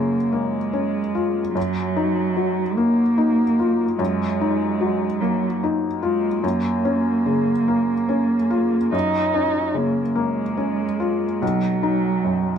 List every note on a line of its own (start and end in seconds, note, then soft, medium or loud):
0.00 1.52 F#2 soft
0.00 0.57 C#3 soft
0.00 0.34 A#3 medium
0.00 0.16 C#4 soft
0.00 1.15 F4 soft
0.32 1.54 G#3 medium
0.32 0.98 A#3 soft
0.73 1.39 C#4 soft
1.15 1.56 F4 soft
1.55 3.95 F#2 soft
1.55 2.78 F#3 medium
1.96 2.62 D#4 soft
2.37 3.02 F#3 soft
2.77 3.97 A#3 medium
2.77 3.42 A#3 soft
3.18 3.83 D#4 soft
3.59 4.24 F4 soft
3.98 6.39 F#2 soft
3.98 5.22 G#3 medium
4.41 5.05 D#4 soft
4.81 5.45 F#3 soft
5.20 5.61 F#3 medium
5.20 5.86 A#3 soft
5.64 6.28 D#4 soft
6.01 6.44 G#3 medium
6.01 6.43 F4 soft
6.42 8.89 F#2 soft
6.42 8.92 A#3 medium
6.85 7.50 C#4 soft
7.26 7.92 C#3 soft
7.68 8.35 A#3 soft
8.09 8.77 C#4 soft
8.50 9.18 F4 soft
8.92 11.37 F#2 soft
8.92 9.78 D#4 medium
9.34 10.00 C#4 soft
9.74 10.41 C#3 soft
9.74 10.18 A#3 medium
10.15 11.43 G#3 medium
10.15 10.83 A#3 soft
10.57 11.25 C#4 soft
11.00 11.42 F4 soft
11.41 12.58 B1 soft
11.41 12.58 F#3 medium
11.83 12.51 D#4 soft
12.24 12.58 F#2 soft